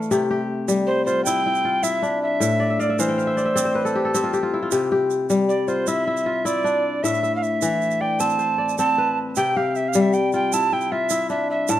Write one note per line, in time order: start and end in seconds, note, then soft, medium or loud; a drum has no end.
0.00 0.16 A2 medium
0.00 0.16 E3 medium
0.00 1.72 A3 medium
0.00 0.17 B4 medium
0.00 0.58 E5 medium
0.00 0.72 F5 medium
0.00 shaker soft
0.11 2.45 C3 medium
0.11 0.30 G4 medium
0.11 shaker medium
0.31 1.72 G4 medium
0.68 2.46 G3 medium
0.68 shaker medium
0.87 1.05 C5 medium
1.05 1.64 F4 medium
1.05 1.24 C5 medium
1.05 shaker soft
1.24 1.46 E4 medium
1.24 1.85 G5 loud
1.24 shaker medium
1.46 1.83 E4 medium
1.55 shaker soft
1.65 2.76 F4 medium
1.83 2.85 E4 medium
1.83 2.22 E5 medium
1.83 shaker medium
2.02 3.70 D4 medium
2.02 shaker soft
2.23 2.81 E5 loud
2.40 4.74 A2 medium
2.40 shaker medium
2.60 3.36 D5 medium
2.70 2.89 E5 medium
2.79 3.02 D5 medium
2.79 2.99 F5 medium
2.79 shaker soft
2.89 3.24 E5 medium
2.99 4.77 E3 medium
2.99 4.15 C5 medium
2.99 3.17 F5 medium
2.99 shaker medium
3.09 4.02 G5 medium
3.18 3.51 F5 medium
3.18 shaker soft
3.27 3.45 E5 medium
3.37 3.55 D5 medium
3.37 shaker soft
3.45 4.30 E5 medium
3.56 4.14 C4 medium
3.56 4.66 D5 medium
3.56 shaker medium
3.65 4.84 C5 medium
3.75 4.20 B4 medium
3.85 4.04 A4 medium
3.85 shaker soft
3.95 4.14 G4 medium
4.05 5.37 A4 medium
4.14 5.94 C4 medium
4.14 4.33 G4 medium
4.14 shaker medium
4.24 4.42 F4 medium
4.33 4.71 G4 medium
4.33 shaker soft
4.43 4.62 F4 medium
4.54 5.74 E4 medium
4.62 5.68 F4 medium
4.71 7.06 C3 medium
4.71 4.91 G4 medium
4.71 shaker medium
4.92 6.33 G4 medium
5.10 shaker soft
5.30 7.09 G3 medium
5.30 shaker medium
5.49 5.69 D5 medium
5.49 shaker soft
5.68 6.26 F4 medium
5.68 5.89 C5 medium
5.68 shaker soft
5.87 6.07 E4 medium
5.87 6.47 E5 medium
5.87 shaker medium
6.07 6.45 E4 medium
6.17 shaker soft
6.26 7.10 F4 medium
6.45 8.02 E4 medium
6.45 7.04 D5 loud
6.45 shaker medium
6.64 8.32 D4 medium
6.64 shaker soft
7.03 9.38 A2 medium
7.03 7.35 E5 loud
7.03 7.23 E5 medium
7.03 shaker medium
7.14 shaker soft
7.23 8.26 E5 medium
7.23 shaker soft
7.36 7.44 F5 medium
7.43 8.03 E5 medium
7.43 shaker soft
7.62 9.41 E3 medium
7.62 shaker medium
7.82 shaker soft
7.91 shaker soft
8.01 8.58 D5 medium
8.01 8.21 G5 loud
8.20 8.78 C4 medium
8.20 8.78 A5 loud
8.20 shaker medium
8.30 shaker soft
8.39 9.04 C5 medium
8.39 shaker soft
8.58 9.69 D5 medium
8.69 shaker soft
8.78 10.59 C4 medium
8.78 9.19 A5 loud
8.78 shaker medium
8.98 10.21 B4 medium
9.36 11.71 C3 medium
9.36 9.56 G4 medium
9.36 9.58 G5 loud
9.36 shaker soft
9.56 10.98 G4 medium
9.56 9.78 F5 medium
9.75 9.90 E5 medium
9.75 shaker soft
9.88 10.02 F5 medium
9.93 11.74 G3 medium
9.93 shaker medium
10.01 10.15 E5 medium
10.13 10.33 G5 medium
10.13 shaker soft
10.32 10.91 F4 medium
10.32 10.55 G5 loud
10.32 shaker soft
10.53 10.72 E4 medium
10.53 10.75 A5 loud
10.53 shaker medium
10.72 11.10 E4 medium
10.72 10.93 G5 medium
10.81 shaker soft
10.92 11.80 F4 medium
10.92 11.30 E5 medium
11.10 11.80 E4 medium
11.10 shaker medium
11.29 11.80 D4 medium
11.29 11.48 E5 medium
11.29 shaker soft
11.50 11.71 E5 medium
11.68 11.80 A2 medium
11.68 11.80 A5 medium
11.68 shaker medium